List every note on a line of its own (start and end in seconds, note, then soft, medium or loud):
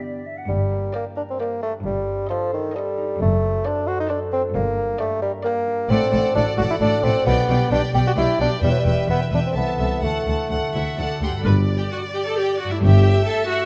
0.00 0.40 G2 soft
0.00 0.22 G3 soft
0.00 0.22 B3 soft
0.00 0.43 B3 soft
0.00 1.61 D4 soft
0.00 0.92 G4 soft
0.00 0.25 D5 soft
0.24 0.36 E5 soft
0.37 0.48 F#5 soft
0.48 0.84 G1 soft
0.48 0.84 G2 soft
0.48 1.82 G2 soft
0.48 0.91 G3 medium
0.71 1.86 A#3 soft
0.93 1.05 A#3 medium
0.93 1.38 G4 soft
0.93 1.28 A#4 soft
0.93 1.28 D5 soft
0.93 1.28 G5 soft
1.16 1.22 D4 medium
1.16 1.86 A#4 soft
1.30 1.39 C4 soft
1.39 1.62 A#3 medium
1.39 3.22 G4 soft
1.39 1.73 A#4 soft
1.39 1.73 D5 soft
1.39 1.73 G5 soft
1.62 1.73 A3 medium
1.62 1.86 D4 soft
1.83 2.20 G1 medium
1.83 3.22 G2 soft
1.83 2.20 G2 medium
1.83 2.29 G3 medium
2.07 3.41 C4 soft
2.29 2.52 F3 medium
2.29 2.74 A4 soft
2.29 2.64 C5 soft
2.29 2.64 D#5 soft
2.29 2.63 A5 soft
2.52 2.77 D#3 medium
2.52 3.86 C5 soft
2.74 3.20 G3 medium
2.74 3.64 A4 soft
2.74 3.08 C5 soft
2.74 3.09 D#5 soft
2.74 3.08 A5 soft
2.97 3.22 D#4 soft
3.20 3.56 F#1 medium
3.20 4.57 F#2 soft
3.20 3.56 F#2 medium
3.20 3.68 A3 medium
3.42 4.57 C4 soft
3.65 3.89 D4 medium
3.65 4.09 A4 soft
3.65 3.98 C5 soft
3.65 3.99 D5 soft
3.65 3.99 A5 soft
3.87 3.99 F#4 medium
3.87 4.57 C5 soft
4.00 4.05 D#4 medium
4.09 4.20 D4 medium
4.09 4.57 A4 soft
4.09 4.43 C5 medium
4.09 4.44 D5 soft
4.09 4.43 A5 medium
4.32 4.43 C4 medium
4.32 5.66 D4 soft
4.54 4.90 G1 medium
4.54 5.91 G2 soft
4.54 4.90 G2 medium
4.54 4.99 A#3 medium
4.77 5.92 A#3 soft
4.99 5.22 A3 medium
4.99 5.43 G4 soft
4.99 5.33 A#4 medium
4.99 5.33 D5 medium
4.99 5.33 G5 soft
5.22 5.32 G3 medium
5.22 5.92 A#4 soft
5.44 5.92 A#3 medium
5.44 5.92 G4 soft
5.44 5.78 A#4 medium
5.44 5.78 D5 medium
5.44 5.79 G5 medium
5.67 7.02 D4 soft
5.90 5.98 A1 medium
5.90 7.28 A2 medium
5.90 5.98 A2 medium
5.90 6.35 C4 medium
5.90 6.11 A4 medium
5.90 6.12 D5 medium
5.90 6.11 F#5 medium
6.12 6.22 A1 medium
6.12 6.20 A2 medium
6.12 7.28 A3 soft
6.12 6.33 A4 medium
6.12 6.35 D5 soft
6.12 6.35 F#5 soft
6.34 6.44 A1 medium
6.34 6.42 A2 medium
6.34 6.46 D4 medium
6.34 6.79 F#4 medium
6.34 6.57 A4 soft
6.34 6.58 D5 medium
6.34 6.57 F#5 soft
6.57 6.67 A1 medium
6.57 6.66 A2 medium
6.57 6.63 F#4 medium
6.57 7.28 A4 soft
6.57 6.80 A4 soft
6.57 6.80 D5 medium
6.57 6.81 F#5 medium
6.70 6.75 E4 medium
6.80 6.90 A1 medium
6.80 6.89 A2 medium
6.80 7.06 D4 medium
6.80 7.28 F#4 soft
6.80 7.02 A4 medium
6.80 7.03 D5 medium
6.80 7.03 F#5 medium
7.03 7.12 A1 medium
7.03 7.11 A2 medium
7.03 7.26 C4 medium
7.03 7.92 D4 soft
7.03 7.26 A4 soft
7.03 7.26 D5 medium
7.03 7.26 F#5 soft
7.26 7.35 B1 medium
7.26 8.65 B2 medium
7.26 7.34 B2 medium
7.26 7.71 B3 medium
7.26 7.46 G4 medium
7.26 7.48 D5 medium
7.26 7.48 G5 medium
7.48 7.57 B1 medium
7.48 7.57 B2 medium
7.48 9.57 G3 soft
7.48 7.70 G4 soft
7.48 7.71 D5 medium
7.48 7.70 G5 soft
7.71 7.80 B1 medium
7.71 7.79 B2 medium
7.71 7.82 D4 medium
7.71 8.15 G4 medium
7.71 7.92 G4 soft
7.71 7.94 D5 medium
7.71 7.93 G5 soft
7.93 8.02 B1 medium
7.93 8.02 B2 medium
7.93 8.39 D4 soft
7.93 8.16 G4 soft
7.93 8.00 G4 medium
7.93 8.16 D5 soft
7.93 8.15 G5 soft
8.07 8.12 F#4 medium
8.16 8.25 B1 medium
8.16 8.25 B2 medium
8.16 8.40 E4 medium
8.16 9.57 G4 soft
8.16 8.39 G4 soft
8.16 8.39 D5 medium
8.16 8.39 G5 medium
8.40 8.48 B1 medium
8.40 8.48 B2 soft
8.40 8.65 D4 soft
8.40 8.51 D4 medium
8.40 8.62 G4 soft
8.40 8.63 D5 soft
8.40 8.60 G5 soft
8.62 8.71 E1 medium
8.62 8.70 E2 medium
8.62 9.57 E3 soft
8.62 8.72 G3 medium
8.62 8.84 B4 medium
8.62 8.86 E5 medium
8.62 8.84 G5 medium
8.71 8.79 F#3 medium
8.78 9.09 G3 medium
8.85 8.94 E1 medium
8.85 8.93 E2 medium
8.85 9.77 E4 soft
8.85 9.07 B4 soft
8.85 9.07 E5 soft
8.85 9.08 G5 soft
9.07 9.17 E1 soft
9.07 9.15 E2 soft
9.07 9.20 B3 medium
9.07 9.57 B4 soft
9.07 9.30 B4 soft
9.07 9.31 E5 soft
9.07 9.31 G5 soft
9.31 9.40 E1 soft
9.31 9.39 E2 soft
9.31 9.39 D4 medium
9.31 9.54 B4 soft
9.31 10.04 E5 soft
9.31 9.54 E5 soft
9.31 9.55 G5 soft
9.46 9.56 C4 medium
9.55 9.63 C2 soft
9.55 10.05 C3 soft
9.55 10.05 B3 medium
9.55 9.77 A4 soft
9.55 9.77 E5 soft
9.55 9.79 A5 soft
9.78 9.87 C2 soft
9.78 10.05 E4 soft
9.78 10.02 A4 soft
9.78 10.50 A4 soft
9.78 10.02 E5 soft
9.78 10.02 A5 soft
10.03 10.11 D2 soft
10.03 11.48 D3 soft
10.03 11.22 A3 medium
10.03 10.26 A4 soft
10.03 10.25 F#5 soft
10.03 10.26 A5 soft
10.26 10.34 D2 soft
10.26 10.35 D2 soft
10.26 11.48 A3 soft
10.26 10.49 A4 soft
10.26 10.50 F#5 soft
10.26 10.50 A5 soft
10.50 10.58 D2 soft
10.50 10.73 A4 soft
10.50 10.98 A4 soft
10.50 10.73 F#5 soft
10.74 10.82 D2 soft
10.74 10.83 E4 soft
10.74 11.21 F#4 soft
10.74 10.97 A4 soft
10.74 10.96 E5 soft
10.74 10.97 F#5 soft
10.98 11.06 D2 soft
10.98 11.07 D4 soft
10.98 11.20 A4 soft
10.98 11.48 A4 soft
10.98 11.23 D5 soft
10.98 11.21 F#5 soft
10.98 11.22 A5 soft
11.21 11.29 D2 soft
11.21 11.30 D2 soft
11.21 11.48 F#4 soft
11.21 11.30 G4 soft
11.21 11.45 A4 soft
11.21 11.46 F#5 soft
11.21 11.31 G5 soft
11.21 11.27 C6 soft
11.28 12.63 G2 soft
11.32 13.65 G3 soft
11.32 11.45 B5 soft
11.37 13.65 G4 soft
11.42 11.82 G1 medium
11.42 11.82 G2 medium
11.42 12.82 B4 soft
11.42 11.53 B4 medium
11.46 12.79 D5 medium
11.46 11.55 B5 medium
11.77 11.92 G4 medium
11.77 11.83 G5 soft
11.92 12.00 F#4 medium
11.92 12.00 F#5 medium
12.14 12.26 G4 medium
12.14 12.19 G5 medium
12.26 12.37 A4 medium
12.26 12.31 A5 medium
12.37 12.60 G4 medium
12.37 12.60 G5 medium
12.59 12.71 F#4 medium
12.59 12.71 F#5 medium
12.64 13.65 G2 soft
12.69 13.65 A3 soft
12.69 12.83 E4 medium
12.69 12.75 E5 medium
12.73 13.65 E4 soft
12.78 13.65 C#5 soft
12.82 13.18 G1 medium
12.82 13.19 G2 medium
12.82 13.27 G4 medium
12.82 13.65 E5 medium
12.82 13.27 G5 medium
13.27 13.49 A4 medium
13.27 13.50 A5 medium
13.49 13.65 F#4 medium
13.49 13.59 F#5 medium